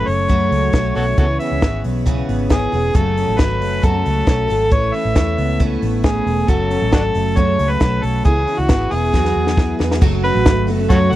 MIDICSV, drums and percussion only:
0, 0, Header, 1, 2, 480
1, 0, Start_track
1, 0, Tempo, 441826
1, 1281, Time_signature, 4, 2, 24, 8
1, 12121, End_track
2, 0, Start_track
2, 0, Title_t, "Drums"
2, 77, Note_on_c, 9, 46, 73
2, 186, Note_off_c, 9, 46, 0
2, 320, Note_on_c, 9, 36, 84
2, 321, Note_on_c, 9, 42, 57
2, 429, Note_off_c, 9, 36, 0
2, 430, Note_off_c, 9, 42, 0
2, 567, Note_on_c, 9, 46, 61
2, 675, Note_off_c, 9, 46, 0
2, 795, Note_on_c, 9, 42, 63
2, 798, Note_on_c, 9, 36, 93
2, 802, Note_on_c, 9, 38, 96
2, 904, Note_off_c, 9, 42, 0
2, 907, Note_off_c, 9, 36, 0
2, 910, Note_off_c, 9, 38, 0
2, 1049, Note_on_c, 9, 46, 70
2, 1158, Note_off_c, 9, 46, 0
2, 1280, Note_on_c, 9, 36, 107
2, 1280, Note_on_c, 9, 42, 66
2, 1388, Note_off_c, 9, 42, 0
2, 1389, Note_off_c, 9, 36, 0
2, 1525, Note_on_c, 9, 46, 68
2, 1633, Note_off_c, 9, 46, 0
2, 1760, Note_on_c, 9, 42, 56
2, 1763, Note_on_c, 9, 38, 106
2, 1764, Note_on_c, 9, 36, 97
2, 1869, Note_off_c, 9, 42, 0
2, 1872, Note_off_c, 9, 38, 0
2, 1873, Note_off_c, 9, 36, 0
2, 2002, Note_on_c, 9, 46, 69
2, 2111, Note_off_c, 9, 46, 0
2, 2243, Note_on_c, 9, 36, 83
2, 2243, Note_on_c, 9, 42, 60
2, 2352, Note_off_c, 9, 36, 0
2, 2352, Note_off_c, 9, 42, 0
2, 2488, Note_on_c, 9, 46, 60
2, 2596, Note_off_c, 9, 46, 0
2, 2715, Note_on_c, 9, 42, 58
2, 2719, Note_on_c, 9, 36, 88
2, 2721, Note_on_c, 9, 38, 91
2, 2823, Note_off_c, 9, 42, 0
2, 2828, Note_off_c, 9, 36, 0
2, 2830, Note_off_c, 9, 38, 0
2, 2967, Note_on_c, 9, 46, 70
2, 3076, Note_off_c, 9, 46, 0
2, 3202, Note_on_c, 9, 42, 73
2, 3203, Note_on_c, 9, 36, 101
2, 3311, Note_off_c, 9, 36, 0
2, 3311, Note_off_c, 9, 42, 0
2, 3448, Note_on_c, 9, 46, 67
2, 3557, Note_off_c, 9, 46, 0
2, 3680, Note_on_c, 9, 42, 57
2, 3683, Note_on_c, 9, 38, 101
2, 3686, Note_on_c, 9, 36, 98
2, 3788, Note_off_c, 9, 42, 0
2, 3792, Note_off_c, 9, 38, 0
2, 3795, Note_off_c, 9, 36, 0
2, 3926, Note_on_c, 9, 46, 77
2, 4035, Note_off_c, 9, 46, 0
2, 4166, Note_on_c, 9, 36, 90
2, 4168, Note_on_c, 9, 42, 55
2, 4274, Note_off_c, 9, 36, 0
2, 4277, Note_off_c, 9, 42, 0
2, 4409, Note_on_c, 9, 46, 59
2, 4517, Note_off_c, 9, 46, 0
2, 4638, Note_on_c, 9, 42, 62
2, 4641, Note_on_c, 9, 36, 100
2, 4644, Note_on_c, 9, 38, 89
2, 4746, Note_off_c, 9, 42, 0
2, 4750, Note_off_c, 9, 36, 0
2, 4753, Note_off_c, 9, 38, 0
2, 4890, Note_on_c, 9, 46, 68
2, 4998, Note_off_c, 9, 46, 0
2, 5123, Note_on_c, 9, 36, 101
2, 5124, Note_on_c, 9, 42, 66
2, 5232, Note_off_c, 9, 36, 0
2, 5233, Note_off_c, 9, 42, 0
2, 5366, Note_on_c, 9, 46, 72
2, 5475, Note_off_c, 9, 46, 0
2, 5601, Note_on_c, 9, 42, 62
2, 5605, Note_on_c, 9, 38, 93
2, 5607, Note_on_c, 9, 36, 100
2, 5710, Note_off_c, 9, 42, 0
2, 5713, Note_off_c, 9, 38, 0
2, 5715, Note_off_c, 9, 36, 0
2, 5845, Note_on_c, 9, 46, 75
2, 5954, Note_off_c, 9, 46, 0
2, 6085, Note_on_c, 9, 36, 86
2, 6085, Note_on_c, 9, 42, 57
2, 6193, Note_off_c, 9, 42, 0
2, 6194, Note_off_c, 9, 36, 0
2, 6326, Note_on_c, 9, 46, 59
2, 6435, Note_off_c, 9, 46, 0
2, 6559, Note_on_c, 9, 42, 64
2, 6562, Note_on_c, 9, 36, 97
2, 6565, Note_on_c, 9, 38, 99
2, 6667, Note_off_c, 9, 42, 0
2, 6671, Note_off_c, 9, 36, 0
2, 6674, Note_off_c, 9, 38, 0
2, 6810, Note_on_c, 9, 46, 75
2, 6919, Note_off_c, 9, 46, 0
2, 7042, Note_on_c, 9, 42, 67
2, 7045, Note_on_c, 9, 36, 98
2, 7151, Note_off_c, 9, 42, 0
2, 7153, Note_off_c, 9, 36, 0
2, 7287, Note_on_c, 9, 46, 66
2, 7395, Note_off_c, 9, 46, 0
2, 7521, Note_on_c, 9, 42, 60
2, 7524, Note_on_c, 9, 38, 101
2, 7528, Note_on_c, 9, 36, 94
2, 7629, Note_off_c, 9, 42, 0
2, 7633, Note_off_c, 9, 38, 0
2, 7637, Note_off_c, 9, 36, 0
2, 7762, Note_on_c, 9, 46, 73
2, 7870, Note_off_c, 9, 46, 0
2, 8003, Note_on_c, 9, 42, 53
2, 8006, Note_on_c, 9, 36, 84
2, 8112, Note_off_c, 9, 42, 0
2, 8115, Note_off_c, 9, 36, 0
2, 8248, Note_on_c, 9, 46, 63
2, 8357, Note_off_c, 9, 46, 0
2, 8477, Note_on_c, 9, 42, 61
2, 8483, Note_on_c, 9, 36, 94
2, 8483, Note_on_c, 9, 38, 97
2, 8585, Note_off_c, 9, 42, 0
2, 8592, Note_off_c, 9, 36, 0
2, 8592, Note_off_c, 9, 38, 0
2, 8727, Note_on_c, 9, 46, 67
2, 8835, Note_off_c, 9, 46, 0
2, 8963, Note_on_c, 9, 42, 69
2, 8967, Note_on_c, 9, 36, 100
2, 9071, Note_off_c, 9, 42, 0
2, 9075, Note_off_c, 9, 36, 0
2, 9208, Note_on_c, 9, 46, 71
2, 9316, Note_off_c, 9, 46, 0
2, 9438, Note_on_c, 9, 42, 63
2, 9442, Note_on_c, 9, 38, 103
2, 9449, Note_on_c, 9, 36, 98
2, 9547, Note_off_c, 9, 42, 0
2, 9550, Note_off_c, 9, 38, 0
2, 9558, Note_off_c, 9, 36, 0
2, 9683, Note_on_c, 9, 46, 80
2, 9792, Note_off_c, 9, 46, 0
2, 9926, Note_on_c, 9, 36, 80
2, 9929, Note_on_c, 9, 38, 48
2, 10035, Note_off_c, 9, 36, 0
2, 10037, Note_off_c, 9, 38, 0
2, 10050, Note_on_c, 9, 38, 47
2, 10159, Note_off_c, 9, 38, 0
2, 10288, Note_on_c, 9, 38, 62
2, 10396, Note_off_c, 9, 38, 0
2, 10402, Note_on_c, 9, 36, 99
2, 10407, Note_on_c, 9, 38, 66
2, 10510, Note_off_c, 9, 36, 0
2, 10516, Note_off_c, 9, 38, 0
2, 10646, Note_on_c, 9, 38, 82
2, 10755, Note_off_c, 9, 38, 0
2, 10771, Note_on_c, 9, 38, 75
2, 10879, Note_off_c, 9, 38, 0
2, 10883, Note_on_c, 9, 49, 107
2, 10884, Note_on_c, 9, 36, 118
2, 10992, Note_off_c, 9, 36, 0
2, 10992, Note_off_c, 9, 49, 0
2, 11128, Note_on_c, 9, 46, 78
2, 11236, Note_off_c, 9, 46, 0
2, 11358, Note_on_c, 9, 42, 62
2, 11362, Note_on_c, 9, 38, 110
2, 11366, Note_on_c, 9, 36, 108
2, 11467, Note_off_c, 9, 42, 0
2, 11470, Note_off_c, 9, 38, 0
2, 11475, Note_off_c, 9, 36, 0
2, 11602, Note_on_c, 9, 46, 82
2, 11711, Note_off_c, 9, 46, 0
2, 11841, Note_on_c, 9, 42, 64
2, 11843, Note_on_c, 9, 36, 94
2, 11949, Note_off_c, 9, 42, 0
2, 11952, Note_off_c, 9, 36, 0
2, 12121, End_track
0, 0, End_of_file